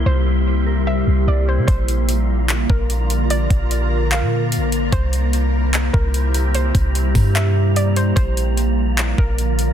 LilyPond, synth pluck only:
\new Staff \with { instrumentName = "Synth pluck" } { \time 4/4 \key bes \lydian \tempo 4 = 148 c''2 e''4 d''8 c''8 | c''2~ c''8 bes'4. | d''2 f''4 r4 | c''2~ c''8 bes'4. |
c''2 e''4 d''8 c''8 | c''2~ c''8 bes'4. | }